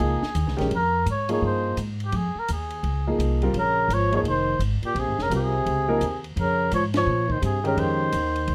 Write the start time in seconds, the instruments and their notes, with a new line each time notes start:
Already playing: muted trumpet G#4
0.00 upright bass C#2, grand piano F3 A#3 D#4 G#4, ride
0.22 muted upright bass stroke, snare
0.35 upright bass D#2, hi-hat pedal, ride
0.46 upright bass C#2, snare
0.57 upright bass A#1, grand piano D#3 G#3 C#4 G4, snare, ride
0.71 upright bass F2, muted trumpet A#4, ride
1.06 upright bass G#2, hi-hat pedal, ride
1.11 muted trumpet C#5
1.29 grand piano F3 A#3 D#4 G#4, ride
1.33 muted trumpet C#5
1.42 upright bass G2
1.46 muted trumpet C5
1.77 upright bass G#2, hi-hat pedal, ride
2.00 ride
2.05 muted trumpet G4
2.12 upright bass F2, ride
2.16 muted trumpet G#4
2.35 muted trumpet A#4, muted upright bass stroke
2.48 upright bass D#2, muted trumpet G#4, hi-hat pedal, ride
2.70 ride
2.83 upright bass C#2, ride
3.07 grand piano F3 A#3 D#4 G#4
3.18 upright bass C2, hi-hat pedal, ride
3.42 grand piano G3 C4 F4 A#4, ride
3.53 upright bass A#1, trombone C#3, ride
3.59 muted trumpet A#4
3.88 upright bass G#1, hi-hat pedal, ride
3.92 trombone F3, muted trumpet C#5
4.12 grand piano F3 A#3 D#4 G#4, trombone F3, ride
4.16 muted trumpet C#5
4.23 upright bass F1, ride
4.27 trombone D#3, muted trumpet C5
4.59 upright bass G#1, hi-hat pedal, ride
4.82 trombone A#2, muted upright bass stroke, ride
4.86 muted trumpet G4
4.95 upright bass A#1, trombone C3, ride
5.00 muted trumpet G#4
5.07 upright bass G#1
5.18 upright bass F1, trombone C#3, snare
5.23 muted trumpet A#4
5.30 upright bass C2, trombone C3, grand piano G3 C4 F4 A#4, hi-hat pedal, ride
5.36 muted trumpet G#4
5.66 upright bass C#2, ride
5.88 grand piano F3 A#3 D#4 A#4
6.01 upright bass D#2, hi-hat pedal, ride
6.24 ride
6.36 upright bass F2, trombone C#3, muted trumpet A#4, ride
6.72 upright bass G#2, trombone F3, muted trumpet C#5, hi-hat pedal, ride
6.94 trombone F3, muted trumpet C#5, snare, ride
7.07 upright bass A#2
7.30 trombone D#3, muted trumpet C5, kick
7.42 upright bass G2, trombone C3, muted trumpet G#4, hi-hat pedal, ride
7.63 trombone C#3, grand piano D#3 G#3 C#4 G4, muted trumpet A#4, ride
7.77 upright bass F2, trombone D#3, muted trumpet C5, ride
8.12 upright bass D#2, hi-hat pedal, ride
8.36 ride
8.48 upright bass C#2, ride